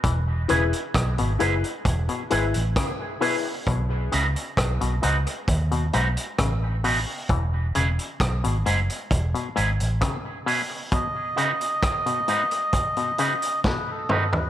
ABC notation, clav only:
X:1
M:4/4
L:1/16
Q:1/4=66
K:E
V:1 name="Clav" clef=bass
E, z C, z2 B,, G,, z2 B,, G,, z C, z B,, z | B,, z C, z2 B,, G,, z2 B,, G,, z C, z B,, z | E, z C, z2 B,, G,, z2 B,, G,, z C, z B,, z | B,, z C, z2 B,, G,, z2 B,, C, z B,, z D, z |]